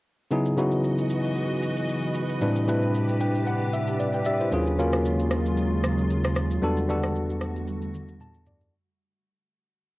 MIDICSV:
0, 0, Header, 1, 5, 480
1, 0, Start_track
1, 0, Tempo, 526316
1, 280, Time_signature, 4, 2, 24, 8
1, 9105, End_track
2, 0, Start_track
2, 0, Title_t, "Tine electric piano"
2, 0, Program_c, 0, 4
2, 277, Note_on_c, 0, 49, 85
2, 280, Note_on_c, 0, 54, 76
2, 284, Note_on_c, 0, 59, 75
2, 288, Note_on_c, 0, 63, 77
2, 292, Note_on_c, 0, 64, 76
2, 295, Note_on_c, 0, 68, 92
2, 451, Control_c, 0, 64, 127
2, 475, Note_off_c, 0, 49, 0
2, 477, Note_off_c, 0, 54, 0
2, 479, Note_off_c, 0, 59, 0
2, 481, Note_off_c, 0, 63, 0
2, 483, Note_off_c, 0, 64, 0
2, 485, Note_off_c, 0, 68, 0
2, 516, Note_on_c, 0, 49, 84
2, 520, Note_on_c, 0, 54, 77
2, 523, Note_on_c, 0, 59, 75
2, 527, Note_on_c, 0, 63, 70
2, 531, Note_on_c, 0, 64, 74
2, 535, Note_on_c, 0, 66, 85
2, 1291, Note_off_c, 0, 49, 0
2, 1293, Note_off_c, 0, 54, 0
2, 1295, Note_off_c, 0, 59, 0
2, 1297, Note_off_c, 0, 63, 0
2, 1298, Note_off_c, 0, 64, 0
2, 1300, Note_off_c, 0, 66, 0
2, 2197, Note_on_c, 0, 45, 85
2, 2200, Note_on_c, 0, 55, 77
2, 2204, Note_on_c, 0, 60, 77
2, 2207, Note_on_c, 0, 62, 76
2, 2211, Note_on_c, 0, 64, 77
2, 2212, Control_c, 0, 64, 0
2, 2215, Note_on_c, 0, 71, 91
2, 2350, Control_c, 0, 64, 127
2, 2395, Note_off_c, 0, 45, 0
2, 2397, Note_off_c, 0, 55, 0
2, 2399, Note_off_c, 0, 60, 0
2, 2401, Note_off_c, 0, 62, 0
2, 2403, Note_off_c, 0, 64, 0
2, 2405, Note_off_c, 0, 71, 0
2, 2436, Note_on_c, 0, 45, 80
2, 2440, Note_on_c, 0, 55, 76
2, 2444, Note_on_c, 0, 60, 75
2, 2448, Note_on_c, 0, 62, 73
2, 2451, Note_on_c, 0, 64, 75
2, 2454, Note_on_c, 0, 71, 90
2, 2927, Note_on_c, 0, 79, 70
2, 3147, Note_off_c, 0, 79, 0
2, 3166, Note_on_c, 0, 78, 72
2, 3211, Note_off_c, 0, 45, 0
2, 3213, Note_off_c, 0, 55, 0
2, 3215, Note_off_c, 0, 60, 0
2, 3217, Note_off_c, 0, 62, 0
2, 3219, Note_off_c, 0, 64, 0
2, 3220, Note_off_c, 0, 71, 0
2, 3387, Note_off_c, 0, 78, 0
2, 3407, Note_on_c, 0, 76, 68
2, 3627, Note_off_c, 0, 76, 0
2, 3646, Note_on_c, 0, 74, 72
2, 3779, Note_on_c, 0, 79, 64
2, 3784, Note_on_c, 0, 71, 53
2, 3867, Note_off_c, 0, 74, 0
2, 3878, Note_off_c, 0, 79, 0
2, 3881, Note_off_c, 0, 71, 0
2, 3886, Note_on_c, 0, 76, 71
2, 3887, Note_on_c, 0, 74, 67
2, 3892, Note_on_c, 0, 67, 58
2, 4009, Note_off_c, 0, 76, 0
2, 4012, Note_off_c, 0, 67, 0
2, 4018, Note_on_c, 0, 72, 67
2, 4023, Note_on_c, 0, 64, 56
2, 4107, Note_off_c, 0, 74, 0
2, 4118, Note_on_c, 0, 54, 84
2, 4122, Note_on_c, 0, 58, 76
2, 4127, Note_on_c, 0, 61, 75
2, 4132, Note_on_c, 0, 65, 81
2, 4133, Control_c, 0, 64, 0
2, 4136, Note_on_c, 0, 68, 92
2, 4243, Note_off_c, 0, 72, 0
2, 4246, Note_off_c, 0, 64, 0
2, 4312, Control_c, 0, 64, 127
2, 4316, Note_off_c, 0, 54, 0
2, 4318, Note_off_c, 0, 58, 0
2, 4320, Note_off_c, 0, 61, 0
2, 4323, Note_off_c, 0, 65, 0
2, 4325, Note_off_c, 0, 68, 0
2, 4357, Note_on_c, 0, 54, 81
2, 4363, Note_on_c, 0, 58, 72
2, 4367, Note_on_c, 0, 61, 75
2, 4372, Note_on_c, 0, 65, 76
2, 4377, Note_on_c, 0, 70, 88
2, 5132, Note_off_c, 0, 54, 0
2, 5134, Note_off_c, 0, 58, 0
2, 5136, Note_off_c, 0, 61, 0
2, 5139, Note_off_c, 0, 65, 0
2, 5141, Note_off_c, 0, 70, 0
2, 6036, Note_on_c, 0, 55, 83
2, 6041, Note_on_c, 0, 59, 79
2, 6046, Note_on_c, 0, 62, 78
2, 6050, Control_c, 0, 64, 0
2, 6050, Note_on_c, 0, 66, 79
2, 6055, Note_on_c, 0, 69, 98
2, 6222, Control_c, 0, 64, 127
2, 6235, Note_off_c, 0, 55, 0
2, 6238, Note_off_c, 0, 59, 0
2, 6240, Note_off_c, 0, 62, 0
2, 6242, Note_off_c, 0, 66, 0
2, 6244, Note_off_c, 0, 69, 0
2, 6277, Note_on_c, 0, 55, 84
2, 6281, Note_on_c, 0, 59, 73
2, 6286, Note_on_c, 0, 62, 75
2, 6291, Note_on_c, 0, 66, 76
2, 6295, Note_on_c, 0, 69, 88
2, 7051, Note_off_c, 0, 55, 0
2, 7054, Note_off_c, 0, 59, 0
2, 7056, Note_off_c, 0, 62, 0
2, 7058, Note_off_c, 0, 66, 0
2, 7061, Note_off_c, 0, 69, 0
2, 7486, Note_on_c, 0, 81, 74
2, 7707, Note_off_c, 0, 81, 0
2, 7726, Note_on_c, 0, 74, 68
2, 7947, Note_off_c, 0, 74, 0
2, 7973, Control_c, 0, 64, 0
2, 9105, End_track
3, 0, Start_track
3, 0, Title_t, "Ambient pad"
3, 0, Program_c, 1, 92
3, 280, Note_on_c, 1, 37, 78
3, 280, Note_on_c, 1, 52, 71
3, 280, Note_on_c, 1, 66, 90
3, 280, Note_on_c, 1, 71, 73
3, 280, Note_on_c, 1, 75, 74
3, 2181, Note_off_c, 1, 37, 0
3, 2181, Note_off_c, 1, 52, 0
3, 2181, Note_off_c, 1, 66, 0
3, 2181, Note_off_c, 1, 75, 0
3, 2200, Note_on_c, 1, 62, 75
3, 2200, Note_on_c, 1, 67, 87
3, 2201, Note_on_c, 1, 48, 82
3, 4084, Note_off_c, 1, 71, 0
3, 4101, Note_off_c, 1, 48, 0
3, 4101, Note_off_c, 1, 62, 0
3, 4101, Note_off_c, 1, 67, 0
3, 4121, Note_on_c, 1, 49, 78
3, 4121, Note_on_c, 1, 54, 72
3, 4121, Note_on_c, 1, 56, 74
3, 4121, Note_on_c, 1, 65, 88
3, 6021, Note_off_c, 1, 54, 0
3, 6021, Note_off_c, 1, 56, 0
3, 6022, Note_off_c, 1, 49, 0
3, 6022, Note_off_c, 1, 65, 0
3, 6040, Note_on_c, 1, 55, 76
3, 6041, Note_on_c, 1, 50, 83
3, 6041, Note_on_c, 1, 57, 74
3, 6041, Note_on_c, 1, 66, 89
3, 7941, Note_off_c, 1, 50, 0
3, 7941, Note_off_c, 1, 55, 0
3, 7941, Note_off_c, 1, 57, 0
3, 7942, Note_off_c, 1, 66, 0
3, 9105, End_track
4, 0, Start_track
4, 0, Title_t, "Sub bass"
4, 0, Program_c, 2, 38
4, 4121, Note_on_c, 2, 39, 84
4, 6004, Note_off_c, 2, 39, 0
4, 6040, Note_on_c, 2, 40, 85
4, 7924, Note_off_c, 2, 40, 0
4, 9105, End_track
5, 0, Start_track
5, 0, Title_t, "Drums"
5, 281, Note_on_c, 9, 82, 59
5, 372, Note_off_c, 9, 82, 0
5, 413, Note_on_c, 9, 82, 51
5, 505, Note_off_c, 9, 82, 0
5, 526, Note_on_c, 9, 82, 89
5, 618, Note_off_c, 9, 82, 0
5, 649, Note_on_c, 9, 82, 43
5, 740, Note_off_c, 9, 82, 0
5, 766, Note_on_c, 9, 82, 72
5, 857, Note_off_c, 9, 82, 0
5, 898, Note_on_c, 9, 82, 50
5, 989, Note_off_c, 9, 82, 0
5, 1002, Note_on_c, 9, 82, 78
5, 1093, Note_off_c, 9, 82, 0
5, 1136, Note_on_c, 9, 82, 46
5, 1227, Note_off_c, 9, 82, 0
5, 1240, Note_on_c, 9, 82, 70
5, 1331, Note_off_c, 9, 82, 0
5, 1485, Note_on_c, 9, 82, 95
5, 1576, Note_off_c, 9, 82, 0
5, 1613, Note_on_c, 9, 82, 55
5, 1704, Note_off_c, 9, 82, 0
5, 1725, Note_on_c, 9, 82, 65
5, 1816, Note_off_c, 9, 82, 0
5, 1849, Note_on_c, 9, 82, 54
5, 1940, Note_off_c, 9, 82, 0
5, 1956, Note_on_c, 9, 82, 88
5, 2047, Note_off_c, 9, 82, 0
5, 2093, Note_on_c, 9, 82, 52
5, 2184, Note_off_c, 9, 82, 0
5, 2201, Note_on_c, 9, 82, 63
5, 2292, Note_off_c, 9, 82, 0
5, 2333, Note_on_c, 9, 82, 54
5, 2425, Note_off_c, 9, 82, 0
5, 2448, Note_on_c, 9, 82, 92
5, 2539, Note_off_c, 9, 82, 0
5, 2570, Note_on_c, 9, 82, 44
5, 2662, Note_off_c, 9, 82, 0
5, 2687, Note_on_c, 9, 82, 72
5, 2778, Note_off_c, 9, 82, 0
5, 2818, Note_on_c, 9, 82, 51
5, 2909, Note_off_c, 9, 82, 0
5, 2923, Note_on_c, 9, 82, 82
5, 3014, Note_off_c, 9, 82, 0
5, 3057, Note_on_c, 9, 82, 44
5, 3148, Note_off_c, 9, 82, 0
5, 3160, Note_on_c, 9, 82, 67
5, 3251, Note_off_c, 9, 82, 0
5, 3406, Note_on_c, 9, 82, 92
5, 3497, Note_off_c, 9, 82, 0
5, 3534, Note_on_c, 9, 82, 54
5, 3625, Note_off_c, 9, 82, 0
5, 3646, Note_on_c, 9, 82, 66
5, 3737, Note_off_c, 9, 82, 0
5, 3768, Note_on_c, 9, 82, 55
5, 3860, Note_off_c, 9, 82, 0
5, 3876, Note_on_c, 9, 82, 93
5, 3967, Note_off_c, 9, 82, 0
5, 4014, Note_on_c, 9, 82, 51
5, 4105, Note_off_c, 9, 82, 0
5, 4121, Note_on_c, 9, 82, 66
5, 4212, Note_off_c, 9, 82, 0
5, 4254, Note_on_c, 9, 82, 56
5, 4345, Note_off_c, 9, 82, 0
5, 4367, Note_on_c, 9, 82, 91
5, 4458, Note_off_c, 9, 82, 0
5, 4490, Note_on_c, 9, 82, 46
5, 4496, Note_on_c, 9, 37, 90
5, 4581, Note_off_c, 9, 82, 0
5, 4588, Note_off_c, 9, 37, 0
5, 4606, Note_on_c, 9, 82, 75
5, 4697, Note_off_c, 9, 82, 0
5, 4737, Note_on_c, 9, 82, 51
5, 4828, Note_off_c, 9, 82, 0
5, 4840, Note_on_c, 9, 37, 88
5, 4842, Note_on_c, 9, 82, 82
5, 4931, Note_off_c, 9, 37, 0
5, 4933, Note_off_c, 9, 82, 0
5, 4976, Note_on_c, 9, 82, 47
5, 5067, Note_off_c, 9, 82, 0
5, 5079, Note_on_c, 9, 82, 67
5, 5170, Note_off_c, 9, 82, 0
5, 5323, Note_on_c, 9, 37, 97
5, 5326, Note_on_c, 9, 82, 96
5, 5414, Note_off_c, 9, 37, 0
5, 5417, Note_off_c, 9, 82, 0
5, 5453, Note_on_c, 9, 82, 52
5, 5545, Note_off_c, 9, 82, 0
5, 5566, Note_on_c, 9, 82, 63
5, 5657, Note_off_c, 9, 82, 0
5, 5689, Note_on_c, 9, 82, 57
5, 5697, Note_on_c, 9, 37, 97
5, 5780, Note_off_c, 9, 82, 0
5, 5788, Note_off_c, 9, 37, 0
5, 5796, Note_on_c, 9, 82, 98
5, 5802, Note_on_c, 9, 37, 94
5, 5887, Note_off_c, 9, 82, 0
5, 5894, Note_off_c, 9, 37, 0
5, 5934, Note_on_c, 9, 82, 52
5, 6025, Note_off_c, 9, 82, 0
5, 6041, Note_on_c, 9, 82, 63
5, 6132, Note_off_c, 9, 82, 0
5, 6173, Note_on_c, 9, 82, 52
5, 6265, Note_off_c, 9, 82, 0
5, 6287, Note_on_c, 9, 82, 92
5, 6378, Note_off_c, 9, 82, 0
5, 6409, Note_on_c, 9, 82, 46
5, 6416, Note_on_c, 9, 37, 94
5, 6500, Note_off_c, 9, 82, 0
5, 6507, Note_off_c, 9, 37, 0
5, 6525, Note_on_c, 9, 82, 73
5, 6617, Note_off_c, 9, 82, 0
5, 6656, Note_on_c, 9, 82, 54
5, 6747, Note_off_c, 9, 82, 0
5, 6759, Note_on_c, 9, 37, 89
5, 6761, Note_on_c, 9, 82, 82
5, 6850, Note_off_c, 9, 37, 0
5, 6852, Note_off_c, 9, 82, 0
5, 6895, Note_on_c, 9, 82, 46
5, 6987, Note_off_c, 9, 82, 0
5, 6999, Note_on_c, 9, 82, 66
5, 7000, Note_on_c, 9, 48, 51
5, 7090, Note_off_c, 9, 82, 0
5, 7091, Note_off_c, 9, 48, 0
5, 7131, Note_on_c, 9, 82, 47
5, 7222, Note_off_c, 9, 82, 0
5, 7240, Note_on_c, 9, 47, 65
5, 7245, Note_on_c, 9, 82, 94
5, 7331, Note_off_c, 9, 47, 0
5, 7336, Note_off_c, 9, 82, 0
5, 7372, Note_on_c, 9, 47, 61
5, 7372, Note_on_c, 9, 82, 54
5, 7463, Note_off_c, 9, 47, 0
5, 7464, Note_off_c, 9, 82, 0
5, 7480, Note_on_c, 9, 45, 78
5, 7485, Note_on_c, 9, 82, 66
5, 7571, Note_off_c, 9, 45, 0
5, 7576, Note_off_c, 9, 82, 0
5, 7608, Note_on_c, 9, 82, 56
5, 7699, Note_off_c, 9, 82, 0
5, 7715, Note_on_c, 9, 82, 94
5, 7720, Note_on_c, 9, 43, 93
5, 7807, Note_off_c, 9, 82, 0
5, 7811, Note_off_c, 9, 43, 0
5, 7852, Note_on_c, 9, 43, 84
5, 7852, Note_on_c, 9, 82, 52
5, 7943, Note_off_c, 9, 43, 0
5, 7944, Note_off_c, 9, 82, 0
5, 9105, End_track
0, 0, End_of_file